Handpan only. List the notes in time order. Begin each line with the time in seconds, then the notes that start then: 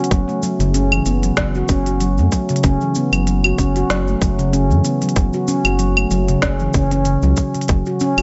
0.12 F#3
0.29 A3
0.43 F#3
0.60 C#3
0.75 C#4
0.92 E3
1.07 B3
1.24 F#3
1.38 F#3
1.56 F#4
1.70 C#4
1.87 F#4
2.01 F#3
2.19 A3
2.33 F#3
2.50 C#3
2.65 C#4
2.82 E3
2.96 B3
3.14 F#3
3.28 F#3
3.45 F#4
3.59 C#4
3.77 F#4
3.90 F#3
4.08 A3
4.21 F#3
4.39 C#3
4.53 C#4
4.71 E3
4.85 B3
5.03 F#3
5.17 F#3
5.34 F#4
5.48 C#4
5.66 F#4
5.79 F#3
5.97 A3
6.11 F#3
6.28 C#3
6.42 C#4
6.60 E3
6.75 C#4
6.92 C#4
7.06 C#3
7.23 F#3
7.38 F#3
7.55 C#3
7.69 F#3
7.87 F#4
8.01 C#4
8.18 F#4